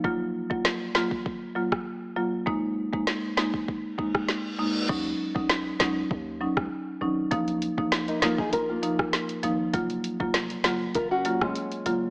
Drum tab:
CC |----------------|----------------|x---------------|----------------|
HH |----------------|----------------|----------------|xxx-xxx-x-x-xxx-|
SD |----o-o----r----|----o-o----ro---|----o-o----r----|----o-o----ro---|
BD |o--o---oo--o----|o--o---oo-oo----|o--o----o--o----|o--o---o---o----|

CC |----------------|
HH |xxx-xxx-x-x-xxx-|
SD |----o-o----r----|
BD |o--o----o--o----|